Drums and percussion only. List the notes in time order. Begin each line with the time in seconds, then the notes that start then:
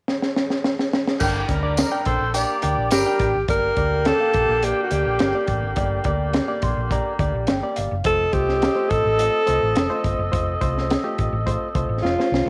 0.08 snare
0.22 snare
0.36 snare
0.50 snare
0.64 snare
0.79 snare
0.93 snare
1.08 snare
1.20 kick, crash, tambourine
1.49 kick, snare, closed hi-hat
1.77 snare, closed hi-hat, tambourine
2.05 kick, closed hi-hat
2.34 closed hi-hat, tambourine
2.62 closed hi-hat
2.91 snare, closed hi-hat, tambourine
3.19 kick, closed hi-hat
3.48 kick, closed hi-hat
3.77 kick, closed hi-hat
4.05 snare, closed hi-hat
4.33 kick, closed hi-hat
4.63 closed hi-hat
4.91 closed hi-hat
5.19 snare, closed hi-hat
5.47 kick, closed hi-hat
5.76 kick, closed hi-hat
6.04 kick, closed hi-hat
6.33 snare, closed hi-hat
6.62 kick, closed hi-hat
6.91 kick, closed hi-hat
7.19 kick, closed hi-hat
7.47 snare, closed hi-hat
7.76 closed hi-hat
8.04 kick, closed hi-hat
8.33 kick, closed hi-hat
8.49 snare
8.62 snare, closed hi-hat
8.90 kick, closed hi-hat
9.19 closed hi-hat
9.47 closed hi-hat
9.75 snare, closed hi-hat
10.04 kick, closed hi-hat
10.33 kick, closed hi-hat
10.61 kick, closed hi-hat
10.78 snare
10.90 snare, closed hi-hat
11.18 kick, closed hi-hat
11.47 kick, closed hi-hat
11.75 kick, closed hi-hat
12.05 snare
12.20 snare
12.34 snare